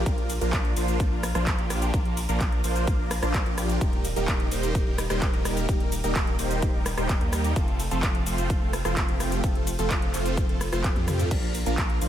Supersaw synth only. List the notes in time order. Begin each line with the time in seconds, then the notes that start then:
0.06 F3 A#3 D4 F4 A#4
0.41 F3 A#3 D4 F4 A#4
0.76 F3 A#3 D4 F4 C5
1.12 F3 A#3 D4 F4 A#4
1.35 F3 A#3 D4 F4 C5
1.59 F3 A#3 D4 F4 G4
1.94 F3 A#3 D4 F4 A#4
2.29 F3 A#3 D4 F4 A#4
2.64 F3 A#3 D4 F4 C5
2.99 F3 A#3 D4 F4 A#4
3.23 F3 A#3 D4 F4 C5
3.46 F3 A#3 D4 F4 G4
3.81 G3 A#3 D#4 G4 A#4
4.16 G3 A#3 D#4 G4 A#4
4.51 G3 A#3 D#4 G4 C5
4.87 G3 A#3 D#4 G4 A#4
5.10 G3 A#3 D#4 G4 C5
5.34 G3 A#3 D#4 G4 A#4
5.69 G3 A#3 D#4 G4 A#4
6.04 G3 A#3 D#4 G4 A#4
6.39 G3 A#3 D#4 G4 C5
6.74 G3 A#3 D#4 G4 A#4
6.98 G3 A#3 D#4 G4 C5
7.21 G3 A#3 D#4 G4 A#4
7.56 F3 A3 C4 F4 A4
7.91 F3 A3 C4 F4 A4
8.27 F3 A3 C4 F4 C5
8.62 F3 A3 C4 F4 A4
8.85 F3 A3 C4 F4 C5
9.09 F3 A3 C4 F4 G4
9.44 F3 A3 C4 F4 A4
9.79 F3 A3 C4 F4 A4
10.14 F3 A3 C4 F4 C5
10.49 F3 A3 C4 F4 A4
10.73 F3 A3 C4 F4 C5
10.96 F3 A3 C4 F4 G4
11.31 F3 A#3 D4 F4 A#4
11.66 F3 A#3 D4 F4 A#4
12.02 F3 A#3 D4 F4 C5